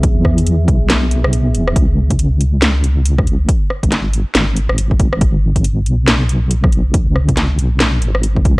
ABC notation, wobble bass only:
X:1
M:4/4
L:1/16
Q:"Swing 16ths" 1/4=139
K:C#m
V:1 name="Wobble bass" clef=bass
B,,, E,,3 E,,2 B,,,4- B,,, B,,,3 E,,,2 | C,,12- C,,2 C,,2 | z3 G,,,4 z G,,,3 G,,,4- G,,,- | G,,,6 B,,,8- B,,,2- |
B,,, C,,3 C,,2 B,,,4 G,,,4 C,,2 |]